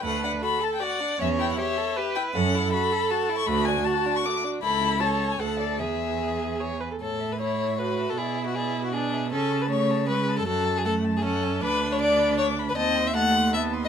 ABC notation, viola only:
X:1
M:3/4
L:1/16
Q:1/4=156
K:Amix
V:1 name="Viola"
B4 A4 d4 | c4 c4 B4 | [K:A] A12 | F12 |
E4 c4 A4 | G4 G4 c2 B A | z4 E4 F4 | E4 E4 D4 |
C4 A,4 G,4 | F,4 A,4 C4 | D12 | ^B,4 A,4 =B,4 |]